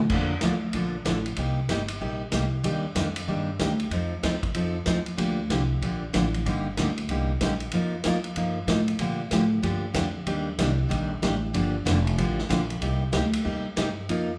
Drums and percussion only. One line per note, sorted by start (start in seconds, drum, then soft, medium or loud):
0.10 kick medium
0.10 crash medium
0.41 snare medium
0.41 hi-hat pedal medium
0.41 ride medium
0.73 ride medium
1.05 snare medium
1.05 hi-hat pedal medium
1.05 ride medium
1.26 ride soft
1.36 ride medium
1.69 snare medium
1.69 hi-hat pedal medium
1.69 ride medium
1.88 ride medium
2.32 snare medium
2.32 hi-hat pedal medium
2.32 ride medium
2.64 ride medium
2.96 snare medium
2.96 hi-hat pedal medium
2.96 ride medium
3.16 ride medium
3.59 snare medium
3.59 hi-hat pedal medium
3.59 ride medium
3.80 ride soft
3.91 ride medium
4.23 snare medium
4.23 hi-hat pedal soft
4.23 ride medium
4.43 kick medium
4.43 ride soft
4.54 ride medium
4.86 snare medium
4.86 hi-hat pedal medium
4.86 ride medium
5.06 ride soft
5.18 ride medium
5.50 snare medium
5.50 hi-hat pedal soft
5.50 ride medium
5.82 ride medium
6.14 snare medium
6.14 hi-hat pedal soft
6.14 ride medium
6.34 ride medium
6.46 ride medium
6.77 snare medium
6.77 hi-hat pedal medium
6.77 ride medium
6.98 ride soft
7.09 ride medium
7.41 snare medium
7.41 hi-hat pedal medium
7.41 ride medium
7.60 ride soft
7.72 ride medium
8.04 snare medium
8.04 hi-hat pedal medium
8.04 ride medium
8.24 ride soft
8.36 ride medium
8.68 snare medium
8.68 hi-hat pedal medium
8.68 ride medium
8.88 ride medium
8.99 ride medium
9.31 snare medium
9.31 hi-hat pedal medium
9.31 ride medium
9.63 ride medium
9.94 snare medium
9.94 hi-hat pedal medium
9.94 ride medium
10.27 ride medium
10.59 snare medium
10.59 hi-hat pedal medium
10.59 ride medium
10.91 ride medium
11.23 snare medium
11.23 hi-hat pedal medium
11.23 ride medium
11.54 ride medium
11.86 snare medium
11.86 hi-hat pedal medium
11.86 ride medium
12.07 ride medium
12.18 ride medium
12.39 snare soft
12.50 snare medium
12.50 hi-hat pedal medium
12.50 ride medium
12.70 ride soft
12.82 ride medium
13.13 snare medium
13.13 hi-hat pedal medium
13.13 ride medium
13.33 ride medium
13.77 snare medium
13.77 hi-hat pedal medium
13.77 ride medium
14.09 ride medium